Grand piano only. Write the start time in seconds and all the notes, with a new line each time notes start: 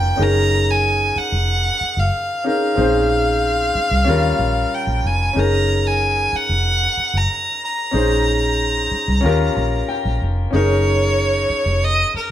Already playing: C#4 F4 G4 A#4
0.16 C#4 D#4 G#4
0.21 A#4
2.44 C#4 D#4 G#4 A#4
2.75 C4 D#4 G#4
2.80 C#4 C5
4.05 G3 C#4 F4
4.10 A#4
5.33 C#4 D#4 G#4
5.38 A#4
7.91 C#4 D#4 G#4
7.96 C5
9.21 C#4 F4 G4
9.26 A#4
9.55 A#5
9.89 G5
10.51 C#4 D#4 G#4
10.56 A#4